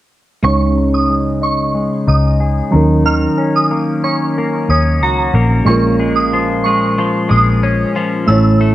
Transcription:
0.43 1.87 C#2 medium
0.43 2.80 C#3 medium
0.43 2.69 G#3 medium
0.43 2.69 C#4 medium
0.43 2.70 D#4 medium
0.43 0.60 C#6 medium
0.47 2.71 C#5 medium
0.77 1.41 D#4 soft
0.94 1.10 D#6 medium
1.10 1.73 G#3 soft
1.41 2.07 D#4 medium
1.41 1.74 C#6 medium
1.75 2.80 G#3 medium
2.07 2.60 C#2 medium
2.07 3.37 D#4 medium
2.07 2.39 D#6 medium
2.40 2.80 G#4 medium
2.71 3.26 D#2 medium
2.71 3.04 D#3 medium
2.71 5.30 F#3 medium
2.71 5.31 C#4 medium
2.71 5.32 D#4 soft
2.76 5.32 A#4 medium
3.05 5.68 D#3 medium
3.05 3.37 F6 medium
3.38 4.03 C#4 soft
3.56 3.87 D#6 medium
3.71 4.38 A#3 medium
4.04 4.70 C#4 medium
4.04 4.20 C#6 medium
4.38 5.34 A#3 medium
4.69 5.02 D#2 medium
4.69 7.63 C#4 medium
4.69 5.01 D#6 medium
5.02 5.28 C#2 medium
5.02 5.75 F#4 medium
5.02 5.49 A#5 medium
5.34 5.61 A#1 medium
5.34 5.99 A#3 medium
5.65 7.10 A#1 medium
5.65 8.30 A#2 medium
5.65 8.24 G#3 medium
5.65 8.25 C#4 medium
5.65 8.26 F4 medium
5.65 5.83 C#6 medium
5.70 8.27 A#4 medium
5.99 6.65 G#3 soft
6.16 6.32 D#6 medium
6.33 6.97 F3 soft
6.64 7.28 G#3 soft
6.64 6.96 C#6 medium
6.98 7.95 F3 medium
7.29 7.84 A#1 medium
7.29 8.35 G#3 medium
7.29 7.62 D#6 medium
7.63 8.75 C#4 medium
7.96 8.36 F3 medium
8.27 8.75 A1 loud
8.27 8.75 A2 medium
8.27 8.75 A3 medium
8.27 8.75 C#4 medium
8.27 8.75 E4 medium
8.27 8.60 E6 medium
8.32 8.75 C#5 medium
8.61 8.75 A3 soft

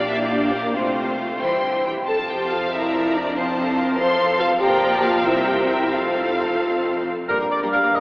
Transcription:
0.00 0.72 A#1 medium
0.00 0.72 A#2 medium
0.00 0.72 D5 medium
0.00 0.72 F5 medium
0.08 0.73 A#3 medium
0.08 0.30 E4 medium
0.08 0.75 G4 medium
0.08 0.16 E5 medium
0.30 0.53 D4 medium
0.30 0.38 D5 soft
0.52 0.75 A#3 medium
0.52 0.74 A#4 medium
0.74 1.85 C2 soft
0.74 1.36 C3 soft
0.74 1.42 A3 soft
0.74 1.42 C4 medium
0.74 1.42 F4 soft
0.74 1.40 C5 soft
0.74 1.41 F5 soft
1.40 1.63 E3 soft
1.40 1.88 G3 soft
1.40 1.88 E4 soft
1.40 1.87 C5 soft
1.40 1.86 C5 medium
1.40 1.88 G5 soft
1.40 1.86 C6 soft
1.64 1.86 D3 soft
1.86 2.08 E3 soft
1.86 2.09 G4 medium
1.86 1.94 G5 soft
2.07 4.57 F1 medium
2.07 4.57 F2 medium
2.07 3.33 F3 soft
2.07 2.69 F4 soft
2.07 2.19 A4 medium
2.07 2.70 C5 soft
2.07 2.29 A5 medium
2.07 2.70 A5 soft
2.29 2.52 G4 medium
2.29 2.51 G5 medium
2.49 2.72 F5 medium
2.53 2.74 F4 medium
2.70 3.37 A#4 soft
2.70 3.37 D5 soft
2.70 3.14 E5 medium
2.70 3.37 A#5 soft
2.75 3.16 E4 medium
3.13 3.37 D4 medium
3.13 3.36 D5 medium
3.34 3.98 F3 medium
3.34 3.97 C5 medium
3.34 3.44 C5 medium
3.38 3.98 C4 medium
3.38 3.97 F5 medium
3.38 3.98 A5 soft
3.58 3.78 A4 soft
3.78 3.99 A#4 medium
3.97 4.60 F3 medium
3.97 4.61 A4 medium
3.97 4.41 C5 medium
3.97 4.59 F5 soft
3.97 4.60 A5 soft
3.97 4.38 C6 medium
4.39 4.61 F4 medium
4.39 4.47 F5 medium
4.60 5.21 A#1 medium
4.60 5.21 A#2 medium
4.60 5.21 F3 medium
4.60 5.02 G4 medium
4.60 5.21 A#4 medium
4.60 5.21 D5 medium
4.60 5.02 G5 medium
4.60 4.91 A#5 medium
4.91 5.24 A5 soft
5.02 5.24 F4 medium
5.02 5.25 F5 medium
5.24 5.92 C2 medium
5.24 5.93 C3 medium
5.24 5.91 C4 medium
5.24 5.47 E4 medium
5.24 5.91 A#4 medium
5.24 5.90 C5 medium
5.24 5.47 E5 medium
5.24 5.91 G5 medium
5.47 5.69 G4 medium
5.47 5.70 G5 medium
5.68 5.92 E4 medium
5.68 5.91 E5 medium
5.91 7.05 F1 medium
5.91 7.06 F2 medium
5.91 7.06 C4 soft
5.91 7.06 F4 medium
5.91 7.09 A4 soft
5.91 7.06 C5 medium
5.91 7.08 F5 soft
5.91 7.06 F5 medium
7.28 7.33 G1 medium
7.28 7.34 G2 medium
7.28 8.00 G3 soft
7.28 7.34 A#3 soft
7.28 8.00 A#3 soft
7.28 8.00 D4 soft
7.28 7.34 G4 medium
7.28 7.38 A#4 medium
7.28 7.33 A#4 soft
7.28 7.50 A#4 medium
7.28 8.00 A#4 soft
7.28 8.00 A#5 soft
7.40 7.45 G2 soft
7.40 7.45 A#3 soft
7.40 7.45 G4 soft
7.40 7.45 A#4 soft
7.51 7.61 D5 soft
7.51 7.59 D5 soft
7.62 7.67 G2 medium
7.62 7.67 A#3 soft
7.62 7.67 G4 soft
7.62 7.67 A#4 soft
7.73 7.77 G1 soft
7.73 7.78 G2 soft
7.73 7.77 A#3 soft
7.73 7.77 G4 soft
7.73 7.77 A#4 soft
7.73 7.97 F5 medium
7.73 7.82 F5 soft
7.83 7.89 G2 soft
7.83 7.88 A#3 soft
7.83 7.88 G4 soft
7.83 7.88 A#4 soft
7.94 7.99 G1 soft
7.94 8.00 G2 soft
7.94 7.99 A#3 soft
7.94 7.99 G4 soft
7.94 7.99 A#4 medium
7.94 8.00 D#5 soft

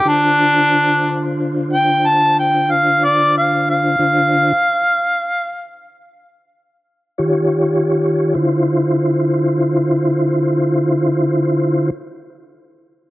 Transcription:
0.05 3.96 D3 medium
0.05 3.96 D4 medium
0.05 1.34 D4 loud
0.05 3.96 F4 medium
0.05 3.96 C5 medium
1.73 2.08 G5 medium
2.07 2.36 A5 loud
2.39 2.73 G5 medium
2.71 3.06 F5 loud
3.05 3.34 D5 medium
3.38 3.67 F5 medium
3.70 5.69 F5 loud
3.99 4.53 D3 medium
3.99 4.53 D4 medium
3.99 4.52 F4 medium
3.99 4.53 C5 medium
7.18 8.34 D#3 medium
7.18 8.34 F4 medium
7.18 8.34 G4 medium
7.18 8.34 C#5 medium
8.34 11.90 D3 medium
8.34 11.89 E4 medium
8.34 11.90 F4 medium
8.34 11.90 C5 medium

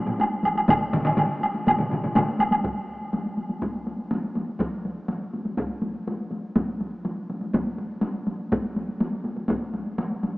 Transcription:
0.07 taiko low-mid medium
0.07 taiko high medium
0.20 taiko high medium
0.20 high woodblock soft
0.43 taiko medium
0.43 taiko high medium
0.43 high woodblock soft
0.55 taiko high medium
0.55 high woodblock soft
0.68 taiko loud
0.68 taiko low-mid medium
0.68 taiko mid loud
0.68 taiko high medium
0.68 high woodblock medium
0.93 taiko low-mid loud
0.93 taiko mid loud
0.93 taiko high soft
1.05 taiko low-mid loud
1.05 taiko mid loud
1.05 taiko high soft
1.05 high woodblock soft
1.17 taiko low-mid medium
1.17 taiko mid loud
1.17 taiko high medium
1.17 high woodblock soft
1.41 taiko high soft
1.41 high woodblock soft
1.54 taiko high soft
1.67 taiko low-mid medium
1.67 taiko mid medium
1.67 taiko high medium
1.67 high woodblock medium
1.79 taiko low-mid medium
1.79 taiko mid medium
1.91 taiko low-mid medium
1.91 taiko mid medium
1.91 taiko high soft
2.04 taiko low-mid medium
2.04 taiko mid medium
2.15 taiko low-mid medium
2.15 taiko mid loud
2.15 taiko high medium
2.15 high woodblock soft
2.39 taiko medium
2.39 taiko high medium
2.39 high woodblock soft
2.51 taiko high medium
2.51 high woodblock soft
2.64 taiko medium
2.64 taiko high soft
2.77 taiko high soft
3.01 taiko high soft
3.13 taiko high soft
3.26 taiko high soft
3.37 taiko high soft
3.49 taiko high soft
3.62 taiko medium
3.62 taiko high soft
3.75 taiko high soft
3.87 taiko high soft
3.98 taiko high soft
4.11 taiko high medium
4.23 taiko high soft
4.35 taiko high soft
4.49 taiko high soft
4.59 taiko medium
4.59 taiko high medium
4.73 taiko high soft
4.85 taiko high soft
4.97 taiko high soft
5.08 taiko high medium
5.21 taiko high soft
5.33 taiko high soft
5.45 taiko high soft
5.58 taiko medium
5.58 taiko high medium
5.71 taiko high soft
5.82 taiko high soft
5.95 taiko high soft
6.08 taiko high medium
6.20 taiko high soft
6.31 taiko high soft
6.44 taiko high soft
6.56 taiko medium
6.56 taiko high medium
6.69 taiko high soft
6.81 taiko high soft
6.93 taiko high soft
7.05 taiko high soft
7.17 taiko high soft
7.30 taiko high soft
7.41 taiko high soft
7.54 taiko medium
7.54 taiko high medium
7.67 taiko high soft
7.78 taiko high soft
7.90 taiko high soft
8.01 taiko high medium
8.14 taiko high soft
8.27 taiko high soft
8.40 taiko high soft
8.52 taiko medium
8.52 taiko high medium
8.64 taiko high soft
8.76 taiko high soft
8.88 taiko high soft
9.00 taiko high medium
9.13 taiko high soft
9.25 taiko high soft
9.37 taiko high soft
9.48 taiko medium
9.48 taiko high medium
9.61 taiko high soft
9.74 taiko high soft
9.86 taiko high soft
9.98 taiko high medium
10.11 taiko high soft
10.23 taiko high medium

